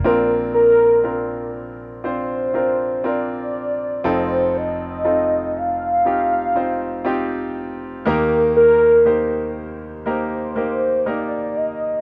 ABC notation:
X:1
M:4/4
L:1/8
Q:1/4=60
K:Bb
V:1 name="Soft synth lead"
B B2 z c2 d2 | c e2 f4 z | B B2 z c2 d e |]
V:2 name="Grand piano"
[CDFB]2 [CDFB]2 [CDFc] [CDFB] [CDFB]2 | [CEFA]2 [CEFA]2 [CEFG] [CEFc] [CEFG]2 | [B,EGB]2 [B,EGc]2 [B,EGB] [B,EGB] [B,EGB]2 |]
V:3 name="Grand piano" clef=bass
[B,,,B,,]8 | [F,,,F,,]8 | [E,,E,]8 |]